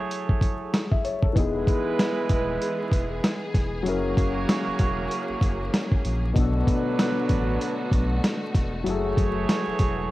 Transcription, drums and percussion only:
0.11 closed hi-hat
0.29 kick
0.41 kick, closed hi-hat
0.74 snare, closed hi-hat
0.92 kick
1.05 closed hi-hat
1.23 kick
1.36 kick, closed hi-hat
1.67 kick, closed hi-hat
1.99 snare, closed hi-hat
2.29 kick, closed hi-hat
2.62 closed hi-hat
2.91 kick, closed hi-hat
3.24 snare, closed hi-hat
3.54 kick, snare, closed hi-hat
3.86 closed hi-hat
4.17 kick, closed hi-hat
4.49 snare, closed hi-hat
4.79 kick, closed hi-hat
5.11 closed hi-hat
5.41 kick, closed hi-hat
5.74 snare, closed hi-hat
5.92 kick
6.05 closed hi-hat
6.36 kick, closed hi-hat
6.67 kick, closed hi-hat
6.99 snare, closed hi-hat
7.29 kick, closed hi-hat
7.61 closed hi-hat
7.91 kick, closed hi-hat
8.24 snare, closed hi-hat
8.54 kick, snare, closed hi-hat
8.86 closed hi-hat
9.17 kick, closed hi-hat
9.49 snare, closed hi-hat
9.79 kick, closed hi-hat

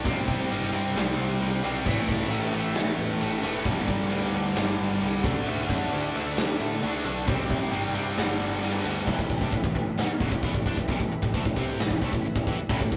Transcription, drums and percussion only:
0.05 kick, ride
0.28 kick, ride
0.42 snare
0.51 ride
0.74 ride
0.96 snare, ride
1.19 ride
1.42 ride
1.64 ride
1.86 kick, crash
2.08 kick, ride
2.22 snare
2.31 ride
2.53 ride
2.75 snare, ride
2.97 ride
3.21 ride
3.43 ride
3.65 kick, ride
3.88 kick, ride
4.00 snare
4.10 ride
4.33 ride
4.56 snare, ride
4.78 ride
5.01 ride
5.24 kick, ride
5.46 ride
5.69 kick, ride
5.82 snare
5.92 ride
6.14 ride
6.37 snare, ride
6.60 ride
6.83 ride
7.05 ride
7.28 kick, ride
7.50 kick, ride
7.63 snare
7.72 ride
7.95 ride
8.17 snare, ride
8.40 ride
8.63 ride
8.85 ride
9.06 kick, crash
9.19 kick
9.30 kick
9.41 kick
9.52 kick, open hi-hat
9.64 kick
9.75 kick
9.98 snare, open hi-hat
10.20 kick
10.32 kick
10.42 kick, open hi-hat
10.54 kick
10.66 kick, snare
10.77 kick
10.88 kick, open hi-hat
11.00 kick
11.23 kick
11.34 kick, open hi-hat
11.45 kick
11.57 kick
11.79 snare, open hi-hat
11.90 kick
12.02 kick
12.13 kick
12.24 open hi-hat
12.36 kick
12.47 kick
12.69 kick, open hi-hat
12.81 kick
12.92 kick

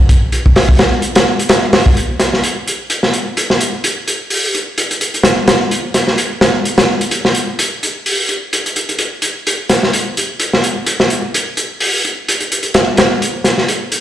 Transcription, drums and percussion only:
0.09 kick, closed hi-hat
0.32 closed hi-hat
0.46 kick
0.56 snare, open hi-hat
0.69 kick
0.79 snare, closed hi-hat
1.02 closed hi-hat
1.15 snare, closed hi-hat
1.39 closed hi-hat
1.49 snare, closed hi-hat
1.73 snare, open hi-hat
1.86 kick
1.97 closed hi-hat
2.20 snare, closed hi-hat
2.34 snare
2.44 closed hi-hat
2.68 closed hi-hat
2.90 closed hi-hat
3.03 snare
3.13 closed hi-hat
3.37 closed hi-hat
3.50 snare
3.60 closed hi-hat
3.84 closed hi-hat
4.08 closed hi-hat
4.30 open hi-hat
4.55 closed hi-hat
4.78 closed hi-hat
4.91 closed hi-hat
5.01 closed hi-hat
5.14 closed hi-hat
5.24 snare, closed hi-hat
5.48 snare, closed hi-hat
5.71 closed hi-hat
5.94 snare, closed hi-hat
6.07 snare
6.18 closed hi-hat
6.41 snare, closed hi-hat
6.65 closed hi-hat
6.78 snare, closed hi-hat
7.01 closed hi-hat
7.11 closed hi-hat
7.25 snare
7.35 closed hi-hat
7.59 closed hi-hat
7.83 closed hi-hat
8.06 open hi-hat
8.29 closed hi-hat
8.53 closed hi-hat
8.66 closed hi-hat
8.76 closed hi-hat
8.89 closed hi-hat
8.99 closed hi-hat
9.22 closed hi-hat
9.47 closed hi-hat
9.69 snare, closed hi-hat
9.83 snare
9.93 closed hi-hat
10.17 closed hi-hat
10.40 closed hi-hat
10.53 snare
10.64 closed hi-hat
10.86 closed hi-hat
11.00 snare
11.10 closed hi-hat
11.34 closed hi-hat
11.57 closed hi-hat
11.80 open hi-hat
12.05 closed hi-hat
12.29 closed hi-hat
12.40 closed hi-hat
12.52 closed hi-hat
12.63 closed hi-hat
12.74 snare, closed hi-hat
12.97 snare, closed hi-hat
13.22 closed hi-hat
13.44 snare, closed hi-hat
13.58 snare
13.68 closed hi-hat
13.92 closed hi-hat

